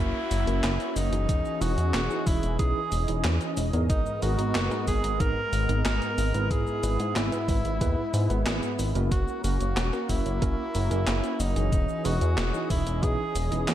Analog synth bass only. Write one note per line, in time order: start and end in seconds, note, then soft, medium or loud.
0.00 0.13 F#1 loud
0.31 0.46 F#1 medium
0.47 0.62 F#1 medium
0.64 0.78 F#1 loud
0.96 1.11 F#1 medium
1.12 1.27 F#1 medium
1.29 1.44 E1 loud
1.61 1.76 E1 medium
1.78 1.92 E2 medium
1.94 2.09 E1 loud
2.27 2.41 E1 loud
2.43 2.58 E1 medium
2.59 2.74 B1 loud
2.92 3.07 E1 medium
3.08 3.23 E1 medium
3.24 3.39 E2 loud
3.57 3.72 E1 loud
3.73 3.88 E2 medium
3.90 4.04 G#1 loud
4.22 4.37 G#1 loud
4.39 4.53 G#1 medium
4.55 4.70 F#1 loud
4.87 5.02 G#1 loud
5.04 5.19 G#1 medium
5.20 5.35 G#1 loud
5.53 5.67 G#1 medium
5.69 5.84 G#1 medium
5.86 6.00 G#1 loud
6.18 6.33 G#1 loud
6.34 6.49 G#1 medium
6.51 6.65 G#1 loud
6.83 6.98 G#1 loud
7.00 7.14 G#2 medium
7.16 7.31 G#1 loud
7.48 7.63 G#1 loud
7.65 7.80 G#1 medium
7.81 7.96 D#2 loud
8.14 8.28 G#2 loud
8.30 8.45 G#1 medium
8.46 8.61 G#1 loud
8.79 8.94 G#1 loud
8.95 9.10 F#1 medium
9.11 9.26 F#1 loud
9.44 9.59 F#1 loud
9.61 9.75 F#1 medium
9.77 9.92 E1 loud
10.09 10.24 F#1 loud
10.26 10.41 F#1 medium
10.42 10.57 F#1 loud
10.75 10.89 F#1 medium
10.91 11.06 F#1 medium
11.07 11.22 F#1 loud
11.40 11.55 F#1 loud
11.56 11.71 F#1 medium
11.72 11.87 E1 loud
12.05 12.20 E1 loud
12.21 12.36 E2 medium
12.38 12.52 E1 loud
12.70 12.85 E1 loud
12.87 13.01 E1 medium
13.03 13.18 B1 loud
13.35 13.50 E1 medium
13.52 13.66 E1 medium
13.68 13.74 E2 loud